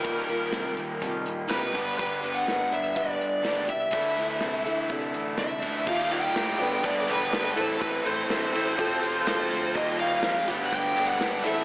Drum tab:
CC |--------|--------|--------|x-------|
RD |--------|--------|--------|-xxxxxxx|
HH |xxxxxxxx|xxxxxxxx|xxxxxxxx|--------|
SD |--o---o-|--o---o-|--o---o-|--o---o-|
BD |o---o--o|o---o--o|o---o--o|o---o---|

CC |--------|--------|
RD |xxxxxxxx|xxxxxxxx|
HH |--------|--------|
SD |--o---o-|--o---o-|
BD |o---o---|o---o---|